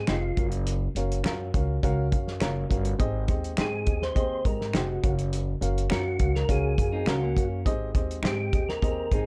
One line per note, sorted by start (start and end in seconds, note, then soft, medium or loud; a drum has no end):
0.07 0.33 F1 medium
0.07 0.31 C4 medium
0.07 0.18 D#4 medium
0.07 0.49 F4 medium
0.07 0.18 G4 medium
0.07 0.31 G4 medium
0.07 0.31 G#4 medium
0.07 0.19 C5 medium
0.07 0.31 D#5 medium
0.07 finger snap medium
0.07 snare loud
0.07 closed hi-hat medium
0.37 0.87 F#1 medium
0.37 0.84 C#4 medium
0.37 0.85 F#4 medium
0.37 0.85 A#4 medium
0.37 0.85 F5 medium
0.37 kick medium
0.37 closed hi-hat medium
0.52 closed hi-hat medium
0.67 closed hi-hat medium
0.95 1.20 F#1 medium
0.95 1.18 C#4 medium
0.95 1.18 F#4 medium
0.95 1.19 A#4 medium
0.95 1.19 F5 medium
0.95 closed hi-hat medium
1.12 closed hi-hat soft
1.24 1.49 F#2 medium
1.24 1.34 C#4 medium
1.24 1.47 C#4 medium
1.24 1.35 F4 medium
1.24 1.47 F#4 medium
1.24 1.35 A#4 medium
1.24 1.48 A#4 medium
1.24 1.48 F5 medium
1.24 finger snap medium
1.24 snare loud
1.24 closed hi-hat medium
1.54 1.79 C#2 medium
1.54 1.76 C#4 medium
1.54 1.76 F#4 medium
1.54 1.77 A#4 medium
1.54 1.77 F5 medium
1.54 kick medium
1.54 closed hi-hat medium
1.83 2.08 C#2 loud
1.83 2.05 C#4 loud
1.83 2.05 F#4 loud
1.83 2.06 A#4 loud
1.83 2.06 F5 loud
1.83 kick medium
1.83 closed hi-hat medium
2.11 2.37 F#2 medium
2.11 2.34 C#4 medium
2.11 2.34 F#4 medium
2.11 2.35 A#4 medium
2.11 2.35 F5 medium
2.11 kick medium
2.11 closed hi-hat medium
2.28 snare soft
2.40 2.66 F#1 medium
2.40 2.51 C#4 medium
2.40 2.63 C#4 medium
2.40 2.51 F4 medium
2.40 2.63 F#4 medium
2.40 2.63 A#4 medium
2.40 2.52 A#4 medium
2.40 2.64 F5 medium
2.40 finger snap medium
2.40 snare loud
2.40 closed hi-hat medium
2.69 2.95 G1 medium
2.69 2.92 C#4 medium
2.69 2.92 F#4 medium
2.69 2.93 A#4 medium
2.69 2.93 F5 medium
2.69 kick medium
2.69 closed hi-hat medium
2.85 closed hi-hat medium
2.99 3.25 G#1 medium
2.99 3.83 G#2 medium
2.99 3.21 C4 loud
2.99 3.22 G4 medium
2.99 3.22 G#4 medium
2.99 3.22 D#5 loud
2.99 kick medium
2.99 closed hi-hat medium
3.28 3.53 D#2 medium
3.28 3.51 C4 medium
3.28 3.51 G4 medium
3.28 3.51 G#4 medium
3.28 3.51 D#5 medium
3.28 kick medium
3.28 closed hi-hat medium
3.44 closed hi-hat soft
3.57 3.83 G#2 medium
3.57 3.80 C4 medium
3.57 3.68 D#4 medium
3.57 3.80 G4 medium
3.57 3.68 G4 medium
3.57 3.80 G#4 medium
3.57 4.04 G#4 medium
3.57 3.68 C5 medium
3.57 3.80 D#5 medium
3.57 finger snap medium
3.57 snare loud
3.57 closed hi-hat medium
3.86 4.12 D#2 medium
3.86 4.09 C4 medium
3.86 4.09 G4 medium
3.86 4.09 G#4 medium
3.86 4.09 D#5 medium
3.86 kick medium
3.86 closed hi-hat medium
4.02 4.47 C5 loud
4.02 snare soft
4.15 4.41 D#2 medium
4.15 4.38 C4 medium
4.15 4.38 G4 medium
4.15 4.38 G#4 medium
4.15 4.38 D#5 loud
4.15 kick medium
4.15 closed hi-hat medium
4.45 4.70 G#2 medium
4.45 4.67 C4 medium
4.45 4.68 G4 medium
4.45 4.68 G#4 medium
4.45 4.75 A#4 medium
4.45 4.68 D#5 medium
4.45 kick medium
4.45 closed hi-hat medium
4.61 snare soft
4.73 4.99 F1 medium
4.73 4.97 C4 medium
4.73 4.84 D#4 medium
4.73 5.15 F#4 medium
4.73 4.85 G4 medium
4.73 4.97 G4 medium
4.73 4.97 G#4 medium
4.73 4.85 C5 medium
4.73 4.97 D#5 medium
4.73 finger snap medium
4.73 snare loud
4.73 closed hi-hat medium
5.03 5.53 F#1 medium
5.03 5.50 C#4 medium
5.03 5.50 F#4 medium
5.03 5.50 A#4 medium
5.03 5.50 F5 medium
5.03 kick medium
5.03 closed hi-hat medium
5.19 closed hi-hat medium
5.33 closed hi-hat medium
5.61 5.86 F#1 medium
5.61 5.84 C#4 medium
5.61 5.84 F#4 medium
5.61 5.84 A#4 medium
5.61 5.84 F5 medium
5.61 closed hi-hat medium
5.78 closed hi-hat soft
5.90 6.16 F#2 medium
5.90 6.13 C#4 medium
5.90 6.00 C#4 medium
5.90 6.01 F4 medium
5.90 6.13 F#4 medium
5.90 6.37 F#4 medium
5.90 6.13 A#4 medium
5.90 6.01 A#4 medium
5.90 6.13 F5 medium
5.90 finger snap medium
5.90 snare loud
5.90 closed hi-hat medium
6.19 6.45 C#2 medium
6.19 6.42 C#4 medium
6.19 6.42 F#4 medium
6.19 6.42 A#4 medium
6.19 6.42 F5 medium
6.19 kick medium
6.19 closed hi-hat medium
6.35 6.50 A#4 medium
6.35 snare soft
6.49 6.74 C#2 medium
6.49 6.71 C#4 medium
6.49 6.71 F#4 medium
6.49 7.10 G#4 medium
6.49 6.71 A#4 medium
6.49 6.71 F5 loud
6.49 kick medium
6.49 closed hi-hat medium
6.78 7.03 F#2 medium
6.78 7.00 C#4 medium
6.78 7.00 F#4 medium
6.78 7.00 A#4 medium
6.78 7.01 F5 medium
6.78 kick medium
6.78 closed hi-hat medium
6.92 7.07 C4 medium
6.92 7.07 D#4 medium
7.06 7.32 C#2 medium
7.06 7.17 C#4 medium
7.06 7.30 C#4 medium
7.06 7.21 C#4 medium
7.06 7.18 F4 medium
7.06 7.22 F4 medium
7.06 7.30 F#4 medium
7.06 7.49 F#4 medium
7.06 7.30 A#4 medium
7.06 7.18 A#4 medium
7.06 7.30 F5 medium
7.06 finger snap medium
7.06 snare loud
7.06 closed hi-hat medium
7.22 7.64 A#3 medium
7.22 7.64 C#4 medium
7.37 7.62 F#2 medium
7.37 7.59 C#4 medium
7.37 7.59 F#4 medium
7.37 7.59 A#4 medium
7.37 7.59 F5 medium
7.37 kick medium
7.37 closed hi-hat medium
7.65 7.91 G#1 medium
7.65 8.49 G#2 medium
7.65 7.88 C4 medium
7.65 7.88 G4 medium
7.65 7.88 G#4 loud
7.65 7.88 D#5 loud
7.65 kick loud
7.65 closed hi-hat medium
7.95 8.20 D#2 medium
7.95 8.17 C4 medium
7.95 8.17 G4 medium
7.95 8.17 G#4 medium
7.95 8.18 D#5 medium
7.95 kick medium
7.95 closed hi-hat medium
8.11 closed hi-hat soft
8.23 8.48 G#2 medium
8.23 8.46 C4 medium
8.23 8.33 D#4 medium
8.23 8.34 G4 medium
8.23 8.46 G4 medium
8.23 8.47 G#4 medium
8.23 8.34 C5 medium
8.23 8.47 D#5 medium
8.23 finger snap medium
8.23 snare loud
8.23 closed hi-hat medium
8.27 8.71 G4 medium
8.52 8.78 D#2 medium
8.52 8.75 C4 medium
8.52 8.75 G4 medium
8.52 8.75 G#4 medium
8.52 8.76 D#5 medium
8.52 kick medium
8.52 closed hi-hat medium
8.69 9.13 A#4 medium
8.69 snare soft
8.82 9.07 D#2 medium
8.82 9.04 C4 medium
8.82 9.05 G4 medium
8.82 9.05 G#4 medium
8.82 9.05 D#5 loud
8.82 kick medium
8.82 closed hi-hat medium
9.11 9.26 G#2 medium
9.11 9.26 C4 medium
9.11 9.26 D#4 medium
9.11 9.26 G4 medium
9.11 9.26 G#4 medium
9.11 9.26 A#4 medium
9.11 kick medium
9.11 closed hi-hat medium